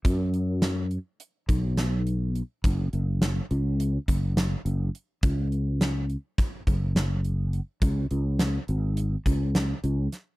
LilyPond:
<<
  \new Staff \with { instrumentName = "Fretless electric bass" } { \clef bass \time 9/8 \key b \major \tempo 4. = 69 fis,2 r8 b,,2 | fis,,8 fis,,4 cis,4 fis,,4 fis,,8 r8 | cis,2 r8 fis,,2 | cis,8 cis,4 gis,,4 cis,4 cis,8 r8 | }
  \new DrumStaff \with { instrumentName = "Drums" } \drummode { \time 9/8 <hh bd>8 hh8 <hh sn>8 hh8 hh8 <hh bd>8 <hh sn>8 hh8 hh8 | <hh bd>8 hh8 <hh sn>8 hh8 hh8 <hh bd>8 <hh sn>8 hh8 hh8 | <hh bd>8 hh8 <hh sn>8 hh8 <hh bd sn>8 <hh bd>8 <hh sn>8 hh8 hh8 | <hh bd>8 hh8 <hh sn>8 hh8 hh8 <hh bd>8 <hh sn>8 hh8 <hh sn>8 | }
>>